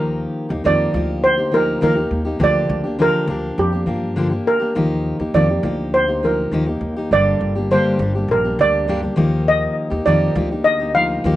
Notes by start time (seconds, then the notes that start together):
Already playing: D#2 D#3 F3 A#3 D#4 G4 A#4
0.49 D#2 A#3 D#4 G4
0.64 F2 D#3 F3 A#3 D#4 G4 D5
0.93 D2 F3 A#3 D#4 G4
1.24 C5
1.37 A#3 D#4 G4
1.52 F3 A#3 D#4 G4 A#4
1.81 D#2 D#3 F3 A#3 D#4 G4 A#4
1.95 A#3 D#4 G4
2.11 D#2
2.25 A#3 D#4 G4
2.39 D2 D3 F3 A#3 D4 G4
2.44 D5
2.69 D2
2.84 A#3 D4 G4
2.99 D3 F3 A#3 D4 G4 A#4
3.28 D2 F3 A#3 D4 G4
3.58 F2 G4
3.72 A#3 D4 G4
3.86 G2 F3 A#3 D4 G4
4.16 D3 F3 A#3 D4 G4
4.29 A#3 D4 G4
4.47 A#4
4.60 A#3 D4 G4
4.75 D#2 D#3 F3 A#3 D#4 G4
5.19 D#2 A#3 D#4 G4
5.34 F2 D#3 F3 A#3 D#4 G4 D5
5.49 A#3 D#4 G4
5.63 D2 F3 A#3 D#4 G4
5.94 C5
6.07 A#3 D#4 G4
6.23 F3 A#3 D#4 G4 A#4
6.51 D#2 D#3 F3 A#3 D#4 G4
6.66 A#3 D#4 G4
6.81 D#2
6.96 A#3 D#4 G4
7.11 G1 G2 D3 G3 A#3 D4 G4 D5
7.41 G1
7.55 G3 A#3 D4 G4
7.71 G2 D3 G3 A#3 D4 G4 C5
7.99 G1 G3 A#3 D4 G4
8.15 G3 A#3 D4 G4
8.28 A#1 A#4
8.44 G3 A#3 D4 G4
8.59 D2 G3 A#3 D4 G4 D5
8.88 G2 D3 G3 A#3 D4 G4
9.02 G3 A#3 D4 G4
9.16 D#2 D#3 F3 A#3 D#4 G4
9.48 D#5
9.90 D#2 A#3 D#4 G4
10.05 F2 D#3 F3 A#3 D#4 G4 D5
10.35 D2 F3 A#3 D#4 G4
10.51 A#3 D#4 G4
10.64 D#5
10.80 A#3 D#4 G4
10.95 F3 A#3 D#4 G4 F5
11.24 D#2 D#3 F3 A#3 D#4 G4